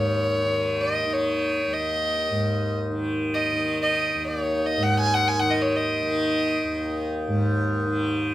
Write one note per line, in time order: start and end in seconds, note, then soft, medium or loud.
0.00 1.67 D#2 soft
0.00 2.30 G#2 soft
0.00 0.44 D#3 soft
0.00 0.83 C#5 medium
0.44 1.05 D#3 soft
0.81 1.14 D#5 medium
1.05 2.91 D#3 medium
1.13 1.75 C#5 medium
1.68 4.15 D#2 soft
1.73 2.76 D#5 medium
2.30 4.77 G#2 soft
2.91 3.53 D#3 soft
3.34 3.80 D#5 medium
3.53 5.41 D#3 medium
3.82 4.27 D#5 medium
4.16 6.63 D#2 soft
4.28 4.68 C#5 medium
4.66 4.85 D#5 medium
4.77 7.27 G#2 soft
4.83 4.99 F#5 medium
5.00 5.15 G#5 medium
5.14 5.30 F#5 medium
5.28 5.41 G#5 medium
5.40 6.02 D#3 soft
5.40 5.52 F#5 medium
5.50 5.63 D#5 medium
5.62 5.77 C#5 medium
5.76 7.06 D#5 medium
6.02 7.86 D#3 medium
6.64 8.34 D#2 soft
7.28 8.34 G#2 medium
7.86 8.34 D#3 medium